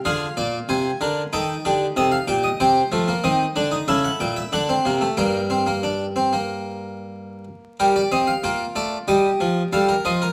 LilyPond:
<<
  \new Staff \with { instrumentName = "Harpsichord" } { \time 4/4 \key ees \major \tempo 4 = 94 << { f''4 aes''4 g''4 ees''16 f''16 g''16 ees''16 | \key g \minor g''4 ees''4 e''16 fis''16 g''16 e''16 fis''4 | g''2.~ g''8 r8 | bes'16 d''16 ees''16 f''16 g''8 d''8 ees''4 f''8 ees''8 | } \\ { aes'8 d''8 c''8 bes'8 a'8 g'8 a'8 g'8 | c''2 a'2 | bes'2.~ bes'8 r8 | g'4 f'4 g'4 a'16 bes'16 c''16 bes'16 | } >> }
  \new Staff \with { instrumentName = "Harpsichord" } { \clef bass \time 4/4 \key ees \major << { f'2 ees'2 | \key g \minor c'8 a16 bes16 c'8 d'16 ees'16 e'4 d'16 c'16 bes16 a16 | bes8 c'16 bes16 d'8 c'16 bes2~ bes16 | g8 c'8 bes8 a8 g8 f8 g8 f8 | } \\ { d8 bes,8 c8 d8 ees8 d8 c8 bes,8 | c8 f8 ees8 d8 cis8 ais,8 d8 c8 | g,2.~ g,8 r8 | r1 | } >> }
>>